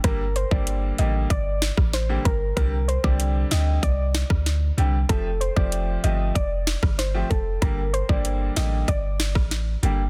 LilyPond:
<<
  \new Staff \with { instrumentName = "Synth pluck" } { \time 4/4 \key g \minor \tempo 4 = 95 bes'16 r16 c''16 d''16 r8 ees''16 r16 d''8. r16 c''16 r16 bes'16 r16 | bes'16 r16 c''16 d''16 r8 ees''16 r16 d''8. r4 r16 | a'16 r16 c''16 d''16 r8 ees''16 r16 d''8. r16 c''16 r16 a'16 r16 | bes'16 r16 c''16 d''16 r8 ees''16 r16 d''8. r4 r16 | }
  \new Staff \with { instrumentName = "Grand piano" } { \time 4/4 \key g \minor <d g bes g'>16 r8 <d g bes g'>8. <d g bes g'>8 r4 r16 <d g bes g'>16 r8 | <d g c' g'>16 r8 <d g c' g'>8. <d g c' g'>8 r4. <d g c' g'>16 r16 | <f a c' g'>16 r8 <f a c' g'>8. <f a c' g'>8 r4 r16 <f a c' g'>16 r8 | <d g bes g'>16 r8 <d g bes g'>8. <d g bes g'>8 r4. <d g bes g'>16 r16 | }
  \new Staff \with { instrumentName = "808-style bass" } { \clef bass \time 4/4 \key g \minor g,,8. g,,8. a,,8 g,,8. a,,8. g,,8 | c,8. c,8. d,8 c,8. d,8. c,8 | f,,8. f,,8. g,,8 f,,8. g,,8. f,,8 | g,,8. g,,8. a,,8 g,,8. a,,8. g,,8 | }
  \new DrumStaff \with { instrumentName = "Drums" } \drummode { \time 4/4 <hh bd>8 hh16 bd16 hh8 hh8 <hh bd>8 <hh sn>16 <bd ss>16 <hh sn>8 <hh bd>8 | <hh bd>8 hh16 bd16 hh8 <hh sn>8 <hh bd>8 <hh sn>16 <bd ss>16 <hh sn>8 hh8 | <hh bd>8 hh16 bd16 hh8 hh8 <hh bd>8 <hh sn>16 <bd ss>16 <hh sn>8 <hh bd>8 | <hh bd>8 hh16 bd16 hh8 <hh sn>8 <hh bd>8 <hh sn>16 <bd ss>16 <hh sn>8 hh8 | }
>>